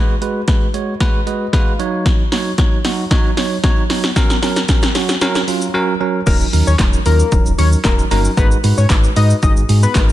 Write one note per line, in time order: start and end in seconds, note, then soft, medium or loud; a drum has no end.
0.00 0.14 G#3 loud
0.00 0.14 F#4 loud
0.00 0.14 B4 loud
0.21 0.40 G#3 medium
0.21 0.41 F#4 medium
0.21 0.41 B4 medium
0.21 closed hi-hat medium
0.48 0.67 G#3 medium
0.48 0.67 F#4 medium
0.48 0.67 B4 loud
0.48 kick loud
0.48 snare medium
0.48 closed hi-hat medium
0.74 0.93 G#3 medium
0.74 0.93 F#4 medium
0.74 0.93 C#5 medium
0.74 closed hi-hat soft
1.00 1.19 G#3 loud
1.00 1.20 F#4 loud
1.00 1.20 B4 loud
1.00 kick loud
1.00 snare medium
1.00 closed hi-hat medium
1.27 1.46 G#3 medium
1.27 1.46 F#4 medium
1.27 1.46 B4 medium
1.27 1.51 D#5 medium
1.27 closed hi-hat soft
1.53 1.72 G#3 loud
1.53 1.72 F#4 loud
1.53 1.72 B4 loud
1.53 2.02 F5 medium
1.53 kick loud
1.53 snare medium
1.53 closed hi-hat medium
1.79 2.22 F#3 medium
1.79 2.22 D#4 medium
1.79 2.22 C#5 loud
1.79 closed hi-hat soft
2.06 kick loud
2.06 snare medium
2.06 closed hi-hat medium
2.32 2.51 F#3 medium
2.32 2.51 D#4 medium
2.32 2.51 C#5 loud
2.32 snare medium
2.32 open hi-hat medium
2.58 2.77 F#3 medium
2.58 2.77 D#4 medium
2.58 2.78 C#5 loud
2.58 kick loud
2.58 snare medium
2.58 closed hi-hat medium
2.85 3.04 F#3 medium
2.85 3.04 D#4 medium
2.85 3.04 F#4 loud
2.85 snare medium
2.85 open hi-hat medium
3.11 3.30 F#3 loud
3.11 3.30 D#4 loud
3.11 3.30 C#5 loud
3.11 kick loud
3.11 snare loud
3.11 closed hi-hat medium
3.37 3.56 F#3 medium
3.37 3.56 D#4 medium
3.37 3.56 C#5 medium
3.37 snare loud
3.37 open hi-hat medium
3.63 3.82 F#3 loud
3.63 3.83 D#4 loud
3.63 3.83 C#5 loud
3.63 kick loud
3.63 snare loud
3.63 closed hi-hat medium
3.90 4.09 F#3 medium
3.90 4.09 D#4 medium
3.90 4.09 C#5 loud
3.90 snare loud
3.90 open hi-hat medium
4.04 snare loud
4.16 4.35 F#3 loud
4.16 4.35 C#4 loud
4.16 4.35 A#4 loud
4.16 kick loud
4.16 snare loud
4.16 closed hi-hat medium
4.16 shaker medium
4.30 snare loud
4.30 shaker medium
4.42 4.61 F#3 medium
4.42 4.62 C#4 medium
4.42 4.62 A#4 loud
4.42 snare loud
4.42 open hi-hat medium
4.42 shaker medium
4.56 snare loud
4.56 shaker medium
4.69 4.88 F#3 medium
4.69 4.88 C#4 medium
4.69 4.88 A#4 loud
4.69 kick loud
4.69 snare loud
4.69 closed hi-hat medium
4.69 shaker medium
4.83 snare loud
4.83 shaker medium
4.95 5.14 F#3 medium
4.95 5.14 C#4 medium
4.95 5.14 F#4 loud
4.95 snare loud
4.95 open hi-hat medium
4.95 shaker medium
5.09 snare loud
5.09 shaker medium
5.21 5.40 F#3 loud
5.21 5.41 C#4 loud
5.21 5.41 A#4 loud
5.21 snare loud
5.21 closed hi-hat medium
5.21 shaker medium
5.35 snare loud
5.35 shaker medium
5.48 5.67 F#3 medium
5.48 5.67 C#4 medium
5.48 5.67 F4 medium
5.48 open hi-hat medium
5.48 shaker medium
5.62 shaker medium
5.74 5.93 F#3 loud
5.74 5.93 C#4 loud
5.74 5.93 A#4 loud
6.00 6.19 F#3 medium
6.00 6.20 C#4 medium
6.00 6.20 A#4 loud
6.27 6.44 D#1 loud
6.27 6.46 F#3 loud
6.27 6.46 C#4 medium
6.27 6.46 D#4 medium
6.27 6.37 A#4 loud
6.27 6.46 A#4 loud
6.27 kick loud
6.27 closed hi-hat medium
6.27 crash loud
6.27 shaker medium
6.41 shaker medium
6.53 6.62 D#2 loud
6.53 6.72 F#3 medium
6.53 6.72 C#4 medium
6.53 6.72 D#4 medium
6.53 6.72 A#4 medium
6.53 open hi-hat medium
6.53 shaker medium
6.67 6.75 D#2 loud
6.67 6.76 C#5 medium
6.67 shaker medium
6.79 6.97 D#1 loud
6.79 6.98 F#3 medium
6.79 6.98 C#4 medium
6.79 6.98 D#4 medium
6.79 6.99 A#4 medium
6.79 kick loud
6.79 snare loud
6.79 clap loud
6.79 closed hi-hat medium
6.79 shaker medium
6.93 shaker medium
7.06 7.23 D#2 loud
7.06 7.25 F#3 medium
7.06 7.25 C#4 medium
7.06 7.25 D#4 medium
7.06 7.25 F4 medium
7.06 7.44 A#4 medium
7.06 open hi-hat medium
7.06 shaker medium
7.20 shaker medium
7.32 7.41 D#1 loud
7.32 7.51 F#3 medium
7.32 7.51 C#4 medium
7.32 7.51 D#4 medium
7.32 7.51 A#4 medium
7.32 kick loud
7.32 closed hi-hat medium
7.32 shaker medium
7.46 7.54 D#1 medium
7.46 shaker medium
7.58 7.76 D#2 loud
7.58 7.77 F#3 medium
7.58 7.77 C#4 medium
7.58 7.77 D#4 medium
7.58 7.78 A#4 medium
7.58 7.69 C#5 medium
7.58 open hi-hat medium
7.58 shaker medium
7.72 shaker medium
7.84 8.02 D#1 loud
7.84 8.04 F#3 loud
7.84 8.04 C#4 loud
7.84 8.04 D#4 loud
7.84 7.95 A#4 medium
7.84 8.04 A#4 loud
7.84 kick loud
7.84 snare loud
7.84 clap loud
7.84 closed hi-hat medium
7.84 shaker medium
7.99 shaker medium
8.11 8.28 G1 loud
8.11 8.30 F#3 loud
8.11 8.30 C#4 medium
8.11 8.30 D#4 medium
8.11 8.21 A#4 medium
8.11 8.30 A#4 loud
8.11 open hi-hat medium
8.11 shaker medium
8.25 shaker medium
8.37 8.55 G#1 loud
8.37 8.56 G#3 loud
8.37 8.56 D#4 loud
8.37 8.56 F#4 medium
8.37 8.48 B4 loud
8.37 8.56 B4 loud
8.37 kick loud
8.37 closed hi-hat medium
8.37 shaker medium
8.51 shaker medium
8.64 8.73 G#2 loud
8.64 8.83 G#3 medium
8.64 8.83 D#4 medium
8.64 8.83 F#4 medium
8.64 8.83 B4 medium
8.64 open hi-hat medium
8.64 shaker medium
8.78 8.86 G#2 medium
8.78 8.87 C#5 medium
8.78 shaker medium
8.89 9.07 G#1 loud
8.89 9.09 G#3 medium
8.89 9.09 D#4 medium
8.89 9.09 F#4 medium
8.89 9.09 B4 medium
8.89 kick loud
8.89 snare loud
8.89 clap loud
8.89 closed hi-hat medium
8.89 shaker medium
9.04 shaker medium
9.16 9.33 G#2 loud
9.16 9.35 G#3 medium
9.16 9.35 D#4 medium
9.16 9.35 F#4 medium
9.16 9.35 B4 medium
9.16 9.36 D#5 medium
9.16 open hi-hat medium
9.16 shaker medium
9.30 shaker medium
9.42 9.52 G#1 loud
9.42 9.61 G#3 medium
9.42 9.62 D#4 medium
9.42 9.62 F#4 medium
9.42 9.62 G#4 medium
9.42 9.53 D#5 medium
9.42 kick loud
9.42 closed hi-hat medium
9.42 shaker medium
9.56 9.65 G#1 medium
9.56 shaker medium
9.69 9.86 G#2 loud
9.69 9.88 G#3 medium
9.69 9.88 D#4 medium
9.69 9.88 F#4 medium
9.69 9.88 G#4 medium
9.69 open hi-hat medium
9.69 shaker medium
9.83 10.02 B4 medium
9.83 shaker medium
9.95 10.12 G#1 loud
9.95 10.12 G#3 loud
9.95 10.12 D#4 medium
9.95 10.12 F#4 medium
9.95 10.12 A#4 loud
9.95 kick loud
9.95 snare loud
9.95 clap loud
9.95 closed hi-hat medium
9.95 shaker medium